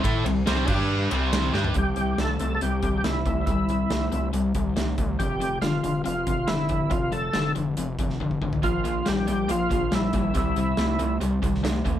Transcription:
<<
  \new Staff \with { instrumentName = "Tonewheel organ" } { \time 4/4 \key c \major \tempo 4 = 140 r1 | \key c \mixolydian g'4 \tuplet 3/2 { a'4~ a'16 a'16 g'4~ g'16 g'16 } e'4 | e'2 r2 | g'4 f'4 f'4 e'4 |
f'8 a'4 r2 r8 | f'4 g'4 f'4 e'4 | e'2 r2 | }
  \new Staff \with { instrumentName = "Distorted electric guitar" } { \clef bass \time 4/4 \key c \major <a e' a'>8 <c g>8 <c g c'>8 <g d' g'>4 <c g c'>4 <g d' g'>8 | \key c \mixolydian r1 | r1 | r1 |
r1 | <bes, f>8 <bes, f>8 <bes, g>8 <bes, g>8 <bes, f>8 <bes, f>8 <bes, g>8 <bes, g>8 | <c g>8 <c g>8 <c a>8 <c a>8 <c g>8 <c g>8 <c a>8 <c a>8 | }
  \new Staff \with { instrumentName = "Overdriven electric guitar" } { \clef bass \time 4/4 \key c \major <a e' a'>8 <c g>8 <c g c'>8 <g d' g'>4 <c g c'>4 <g d' g'>8 | \key c \mixolydian <c g>8 <c g>8 <c a>8 <c a>8 <c g>8 <c g>8 <c a>8 <c a>8 | <c g>8 <c g>8 <c a>8 <c a>8 <c g>8 <c g>8 <c a>8 <c a>8 | <f, c>8 <f, c>8 <f, d>8 <f, d>8 <f, c>8 <f, c>8 <f, d>8 <f, d>8 |
<f, c>8 <f, c>8 <f, d>8 <f, d>8 <f, c>8 <f, c>8 <f, d>8 <f, d>8 | <bes, f>8 <bes, f>8 <bes, g>8 <bes, g>8 <bes, f>8 <bes, f>8 <bes, g>8 <bes, g>8 | <c g>8 <c g>8 <c a>8 <c a>8 <c g>8 <c g>8 <c a>8 <c a>8 | }
  \new Staff \with { instrumentName = "Analog synth bass" } { \clef bass \time 4/4 \key c \major a,8 c,8 c,8 g,4 c,4 g,8 | \key c \mixolydian c,4 c,8 c,8 c,8 c,8 c,8 c,8 | c,4 c,8 c,8 c,8 c,8 c,8 c,8 | f,,4 f,,8 f,,8 f,,8 f,,8 f,,8 f,,8 |
f,,4 f,,8 f,,8 f,,8 f,,8 f,,8 a,,8 | bes,,4 bes,,8 bes,,8 bes,,8 bes,,8 bes,,8 bes,,8 | c,4 c,8 c,8 c,8 c,8 c,8 d,8 | }
  \new DrumStaff \with { instrumentName = "Drums" } \drummode { \time 4/4 <bd cymr>8 cymr8 <cymr sn>8 <cymc bd>8 r8 cymr8 <cymr sn>8 sn16 tomfh16 | <hh bd>8 hh8 <hh sn>8 hh8 hh8 <hh bd>8 <hh sn>8 <hh bd>8 | <hh bd>8 hh8 <hh sn>8 hh8 hh8 <hh bd>8 <hh sn>8 <hh bd>8 | <hh bd>8 hh8 <hh sn>8 hh8 hh8 <hh bd>8 <hh sn>8 <hh bd>8 |
<hh bd>8 hh8 <hh sn>8 hh8 hh8 <hh bd>16 sn16 bd16 bd16 bd16 tomfh16 | <hh bd>8 hh8 <hh sn>8 hh8 hh8 <hh bd>8 <hh sn>8 <hh bd>8 | <hh bd>8 hh8 <hh sn>8 hh8 hh8 <hh bd>16 sn16 <hh sn>8 <hh bd>8 | }
>>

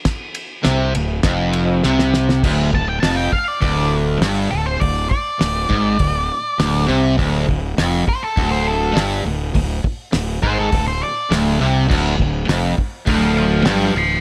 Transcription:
<<
  \new Staff \with { instrumentName = "Lead electric guitar" } { \time 4/4 \key d \minor \tempo 4 = 101 r1 | r8 a''16 g''16 a''16 g''16 f''16 d''16 d''8 r4 a'16 c''16 | d''8 d''2. r8 | r4. c''16 a'8 c''16 a'8 r4 |
r4. c''16 a'8 c''16 d''8 r4 | r2 <f'' a''>8 <f'' a''>8 <f'' a''>8 <a'' c'''>8 | }
  \new Staff \with { instrumentName = "Overdriven electric guitar" } { \clef bass \time 4/4 \key d \minor r4 c8 d,8 f,4 c4 | d,8 d,8 f,8 r8 d,4 g,8 d,8 | d,8 r8 d,8 gis,8 d,8 r8 d,8 c8 | d,8 d,8 f,8 r8 d,4 g,8 d,8 |
d,8 r8 d,8 gis,8 d,8 r8 d,8 c8 | d,8 d,8 f,8 r8 d,4 g,8 d,8 | }
  \new Staff \with { instrumentName = "Fingered electric bass" } { \clef bass \time 4/4 \key d \minor r4 c,8 d,,8 f,,4 c,4 | d,,8 d,,8 f,,8 r8 d,,4 g,,8 d,,8 | d,,8 r8 d,,8 gis,,8 d,,8 r8 d,,8 c,8 | d,,8 d,,8 f,,8 r8 d,,4 g,,8 d,,8 |
d,,8 r8 d,,8 gis,,8 d,,8 r8 d,,8 c,8 | d,,8 d,,8 f,,8 r8 d,,4 g,,8 d,,8 | }
  \new DrumStaff \with { instrumentName = "Drums" } \drummode { \time 4/4 <bd cymr sn>8 cymr8 <cymr sn>8 cymr8 <bd cymr sn>8 cymr8 sn16 sn16 sn16 sn16 | <cymc bd>8 bd8 <hho sn>8 bd8 <hho bd>4 <hho sn>4 | <hho bd>8 bd8 <hho sn>8 bd8 <hho bd>4 <hho sn>4 | <hho bd>8 bd8 <hho sn>8 bd8 <hho bd>4 <hho sn>4 |
<hho bd>8 bd8 <hho sn>8 bd8 <hho bd>4 <hho sn>4 | <cymc bd>8 bd8 <hho sn>8 bd8 <hho bd>4 <hho sn>4 | }
>>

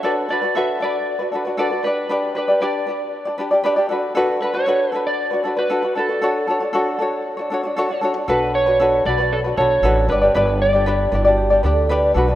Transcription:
<<
  \new Staff \with { instrumentName = "Electric slide guitar" } { \time 4/4 \key b \minor \tempo 4 = 116 d''8 d''8 e''8 d''4. d''8 b'8~ | b'8 b'8 d''2 r4 | r8 b'16 cis''4 d''4 b'8. a'8~ | a'2.~ a'8 r8 |
b'8 cis''4 d''8 a'8 cis''4 b'8 | b'8 d''4. r2 | }
  \new Staff \with { instrumentName = "Ukulele" } { \time 4/4 \key b \minor <d' fis' a' b'>8 <d' fis' a' b'>16 <d' fis' b'>16 <d' fis' a' b'>8 <d' fis' a' b'>8. <d' fis' b'>16 <d' fis' a' b'>16 <d' fis' b'>16 <d' fis' a' b'>16 <d' fis' b'>16 <d' g' b' d''>8 | <d' g' b' d''>8 <d' g' b' d''>16 <d' g' d''>16 <d' g' b' d''>8 <d' g' b' d''>8. <d' g' d''>16 <d' g' b' d''>16 <d' g' d''>16 <d' g' b' d''>16 <d' g' d''>16 <d' fis' a' b'>8 | <d' fis' a' b'>8 <d' fis' a' b'>16 <d' fis' b'>16 <d' fis' a' b'>8 <d' fis' a' b'>8. <d' fis' b'>16 <d' fis' a' b'>16 <d' fis' b'>16 <d' fis' a' b'>16 <d' fis' b'>16 <d' fis' a' b'>16 <d' fis' b'>16 | <d' fis' a' cis''>8 <d' fis' a' cis''>16 <d' fis' cis''>16 <d' fis' a' cis''>8 <d' fis' a' cis''>8. <d' fis' cis''>16 <d' fis' a' cis''>16 <d' fis' cis''>16 <d' fis' a' cis''>16 <d' fis' cis''>16 <d' fis' a' cis''>16 <d' fis' cis''>16 |
<d' fis' a' b'>8. <d' fis' b'>16 <d' fis' a' b'>8 <d' fis' a' b'>16 <d' fis' b'>8 <d' fis' b'>16 <d' fis' a' b'>8 <d' fis' a' b'>8 <d' g' b' d''>16 <d' g' d''>16 | <d' g' b' d''>8. <d' g' d''>16 <d' g' b' d''>8 <d' g' b' d''>16 <d' g' d''>8 <d' g' d''>16 <d' g' b' d''>8 <d' g' b' d''>8 <d' fis' a' b'>16 <d' fis' b'>16 | }
  \new Staff \with { instrumentName = "Vibraphone" } { \time 4/4 \key b \minor r1 | r1 | r1 | r1 |
r1 | r4 \tuplet 3/2 { r8. e'16 fis'8 g'4 a'8 } b'8. r16 | }
  \new Staff \with { instrumentName = "Upright bass" } { \clef bass \time 4/4 \key b \minor r1 | r1 | r1 | r1 |
b,,4. b,,4 b,,8 a,,8 g,,8 | g,,4. g,,4 d,4 b,,8 | }
>>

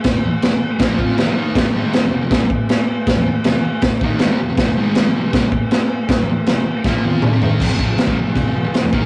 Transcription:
<<
  \new Staff \with { instrumentName = "Distorted electric guitar" } { \clef bass \time 4/4 \key c \dorian \tempo 4 = 159 r4 <f, c>16 r8. <bes, f bes>8 <f c' f'>8 <ees bes>16 <f, c>16 <ees bes ees'>8 | <f, c>16 <f, c>16 <aes, ees aes>8. <f, c>16 <f, c>16 <f, c>16 <c g>16 r4. r16 | r4 <f, c>16 r4 r16 <ees bes ees'>8 <aes, ees>16 <c g>16 <f, c>16 <f, c>16 | <f, c>16 <f, c>16 <aes, ees aes>8. <f, c>16 <f, c>16 <f, c>16 <c g>16 r4. r16 |
r4 <f, c>16 r8. <bes, f bes>8 <f c' f'>8 <ees bes>16 <f, c>16 <ees bes ees'>8 | \key c \mixolydian <f, c>16 r16 <bes, f>16 <f, c>16 r16 <aes, ees>16 <f, c>16 <f, c>16 <f, c>16 <f, c>16 r16 <f, c>16 r8 <ees bes>16 r16 | }
  \new DrumStaff \with { instrumentName = "Drums" } \drummode { \time 4/4 <cymc bd sn>4 <cymc sn>4 <cymc bd sn>8 bd8 <cymc sn>4 | <cymc bd sn>4 <cymc sn>4 <cymc bd sn>8 bd8 <cymc sn>4 | <cymc bd sn>4 <cymc sn>4 <cymc bd sn>8 bd8 <cymc sn>4 | <cymc bd sn>4 <cymc sn>4 <cymc bd sn>8 bd8 <cymc sn>4 |
<cymc bd sn>4 <cymc sn>4 <bd sn>8 tommh8 toml8 tomfh8 | <cymc bd>8 bd8 <cymc sn>16 bd8. <cymc bd>4 <cymc sn>8 bd8 | }
>>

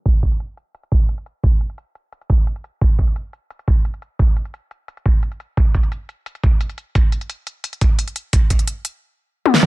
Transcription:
\new DrumStaff \with { instrumentName = "Drums" } \drummode { \time 4/4 \tempo 4 = 174 <hh bd>8 <hh bd>16 hh16 hh8 hh8 hh16 hh16 <hh bd>8 hh16 hh16 hh8 | <hh bd>8 hh16 hh16 hh8 hh8 hh16 hh16 <hh bd>8 hh16 hh16 hh8 | <hh bd>8 <hh bd>16 hh16 hh8 hh8 hh16 hh16 <hh bd>8 hh16 hh16 hh8 | <hh bd>8 hh16 hh16 hh8 hh8 hh16 hh16 <hh bd>8 hh16 hh16 hh8 |
<hh bd>8 <hh bd>16 hh16 hh8 hh8 hh16 hh16 <hh bd>8 hh16 hh16 hh8 | <hh bd>8 hh16 hh16 hh8 hh8 hh16 hh16 <hh bd>8 hh16 hh16 hh8 | <hh bd>8 <hh bd>16 hh16 hh8 hh8 r4 r16 tommh16 sn16 toml16 | }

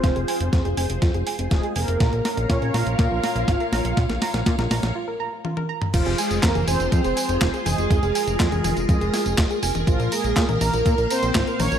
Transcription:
<<
  \new Staff \with { instrumentName = "String machine" } { \time 4/4 \key f \minor \tempo 4 = 122 << { c''1 | <bes f''>1~ | <bes f''>2 r2 | c''1 |
bes'1 | <bes f''>1 | } \\ { <f' aes'>1 | <bes' des''>1~ | <bes' des''>2 r2 | <f' aes'>1~ |
<f' aes'>1 | r1 | } >> }
  \new Staff \with { instrumentName = "Synth arpeggio sound" } { \time 4/4 \key f \minor f'16 aes'16 aes''16 r16 f'16 aes'16 aes''16 r16 f'16 aes'16 aes''16 r16 f'16 aes'16 aes''16 r16 | f'16 bes'16 bes''16 r16 f'16 bes'16 bes''16 r16 f'16 bes'16 bes''16 r16 f'16 bes'16 bes''16 r16 | f'16 bes'16 bes''16 r16 f'16 bes'16 bes''16 r16 f'16 bes'16 bes''16 r16 f'16 bes'16 bes''16 r16 | f'16 aes'16 aes''16 r16 f'16 aes'16 aes''16 r16 f'16 aes'16 aes''16 r16 f'16 aes'16 aes''16 r16 |
f'16 aes'16 aes''16 r16 f'16 aes'16 aes''16 r16 f'16 aes'16 aes''16 r16 f'16 aes'16 aes''16 r16 | f'16 bes'16 bes''16 r16 f'16 bes'16 bes''16 r16 f'16 bes'16 bes''16 r16 f'16 bes'16 bes''16 r16 | }
  \new Staff \with { instrumentName = "Analog polysynth" } { \time 4/4 \key f \minor <c' c''>4. r4. <aes aes'>8 <bes bes'>8~ | <bes bes'>4 <des' des''>8 <f' f''>2~ <f' f''>8~ | <f' f''>2 r2 | <f f'>8 <aes aes'>8 <bes bes'>8 <c' c''>8 <c' c''>4. <aes aes'>8~ |
<aes aes'>4 <aes aes'>4 <aes aes'>4. r8 | <f f'>8 <aes aes'>4 <bes bes'>4 <c' c''>4 <des' des''>8 | }
  \new Staff \with { instrumentName = "Analog synth bass" } { \clef bass \time 4/4 \key f \minor f,,16 f,,16 r16 f,,16 f,16 f,,16 f,,16 f,,16 f,16 f,,16 r16 f,,16 ees,,16 r16 f,,16 f,,16 | bes,,16 bes,,16 r16 bes,,16 bes,16 bes,,16 bes,,16 bes,,16 bes,16 bes,,16 r16 bes,,16 aes,,16 r16 bes,,16 bes,,16 | bes,,16 bes,,16 r16 bes,,16 bes,16 bes,,16 bes,,16 bes,,16 r2 | f,,16 f,,16 r16 f,,16 f,16 f,,16 f,,16 f,,16 f,16 f,,16 r16 f,,16 ees,,16 r16 f,,16 f,,16 |
f,,16 f,,16 r16 f,,16 f,16 f,,16 f,,16 f,,16 f,16 f,,16 r16 f,,16 ees,,16 r16 f,,16 f,,16 | bes,,16 bes,,16 r16 bes,,16 bes,16 bes,,16 bes,,16 bes,,16 bes,16 bes,,16 r16 bes,,16 aes,,16 r16 bes,,16 bes,,16 | }
  \new DrumStaff \with { instrumentName = "Drums" } \drummode { \time 4/4 <hh bd sn>16 hh16 hho16 hh16 <hh bd sn>16 hh16 hho16 hh16 <hh bd sn>16 hh16 hho16 hh16 <hh bd sn>16 hh16 hho16 hh16 | <hh bd sn>16 hh16 <hho sn>16 hh16 <hh bd sn>16 hh16 <hho sn>16 hh16 <hh bd sn>8 <hho sn>16 hh16 <hh bd sn>16 hh16 <hho sn>16 hh16 | <hh bd sn>16 <hh sn>16 <hho sn>16 <hh sn>16 <hh bd sn>16 <hh sn>16 <hho sn>16 <hh sn>16 r4 tommh16 tommh8 toml16 | <cymc hh bd tamb>16 <hh tamb>16 <hho tamb>16 <hh tamb>16 <hc hh bd sn tamb>16 <hh tamb tommh>16 <hho tamb tommh>16 <hh tamb>16 <hh bd tamb>16 <hh tamb>16 <hho tamb>16 <hh tamb>16 <hc hh bd sn tamb>16 <hh tamb>16 <hho tamb tommh>16 <hh tamb>16 |
<hh bd tamb>16 <hh tamb>16 <hho tamb>16 <hh tamb>16 <hc hh bd sn tamb>16 <hh tamb tommh>16 <hho tamb tommh>16 <hh tamb>16 <hh bd tamb>16 <hh tamb>16 <hho sn tamb>16 <hh tamb>16 <hc hh bd sn tamb>16 <hh tamb>16 <hho tamb>16 <hh tamb tommh>16 | <hh bd tamb>16 <hh tamb>16 <hho tamb>16 <hh tamb>16 <hc hh bd sn tamb>16 <hh tamb tommh>16 <hho tamb tommh>16 <hh tamb>16 <hh bd tamb>16 <hh tamb>16 <hho tamb>16 <hh tamb>16 <hc hh bd sn tamb>16 <hh tamb>16 <hho tamb tommh>16 <hh tamb>16 | }
>>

